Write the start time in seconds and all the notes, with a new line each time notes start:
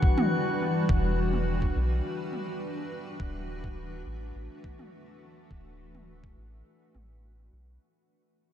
Already playing: E3 G3 D4 F#4 B4 F#5
0.03 kick
0.18 mid tom
0.89 E1, kick
1.33 mid tom
1.62 kick
1.76 B1
2.33 mid tom
3.20 D1 E3, kick
3.25 A3
3.64 kick
4.06 A1
4.35 A1
4.64 kick
4.79 mid tom
5.51 D1, kick
5.95 mid tom
6.24 kick
6.37 A1
6.95 A1, mid tom
7.52 B1